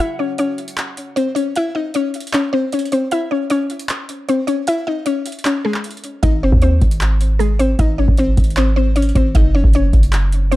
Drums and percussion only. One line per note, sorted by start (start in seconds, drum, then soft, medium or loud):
0.38 closed hi-hat medium
0.58 closed hi-hat soft
0.68 closed hi-hat medium
0.78 clap loud
0.78 closed hi-hat medium
0.97 closed hi-hat medium
1.17 closed hi-hat medium
1.36 closed hi-hat medium
1.56 closed hi-hat medium
1.94 closed hi-hat medium
2.14 closed hi-hat medium
2.20 closed hi-hat medium
2.27 closed hi-hat medium
2.34 clap loud
2.34 closed hi-hat medium
2.72 closed hi-hat medium
2.79 closed hi-hat medium
2.85 closed hi-hat soft
2.92 closed hi-hat medium
3.11 closed hi-hat medium
3.50 closed hi-hat medium
3.70 closed hi-hat soft
3.79 closed hi-hat medium
3.89 clap loud
3.89 closed hi-hat medium
4.09 closed hi-hat medium
4.29 closed hi-hat medium
4.48 closed hi-hat medium
4.67 closed hi-hat medium
5.06 closed hi-hat medium
5.26 closed hi-hat medium
5.32 closed hi-hat medium
5.39 closed hi-hat soft
5.45 clap loud
5.45 closed hi-hat medium
5.74 clap medium
5.84 closed hi-hat medium
5.91 closed hi-hat medium
5.97 closed hi-hat soft
6.04 closed hi-hat medium
6.23 kick loud
6.23 closed hi-hat medium
6.52 kick loud
6.62 closed hi-hat medium
6.82 kick medium
6.82 closed hi-hat soft
6.91 closed hi-hat medium
7.01 clap loud
7.01 closed hi-hat medium
7.21 closed hi-hat medium
7.40 closed hi-hat medium
7.60 closed hi-hat medium
7.79 kick loud
7.79 closed hi-hat medium
8.08 kick medium
8.17 closed hi-hat medium
8.37 kick loud
8.37 closed hi-hat medium
8.44 closed hi-hat medium
8.50 closed hi-hat medium
8.57 clap loud
8.57 closed hi-hat medium
8.96 closed hi-hat medium
9.02 closed hi-hat medium
9.09 closed hi-hat soft
9.15 kick medium
9.15 closed hi-hat medium
9.35 kick loud
9.35 closed hi-hat medium
9.64 kick loud
9.73 closed hi-hat medium
9.93 kick medium
9.93 closed hi-hat soft
10.03 closed hi-hat medium
10.13 clap loud
10.13 closed hi-hat medium
10.32 closed hi-hat medium
10.52 closed hi-hat medium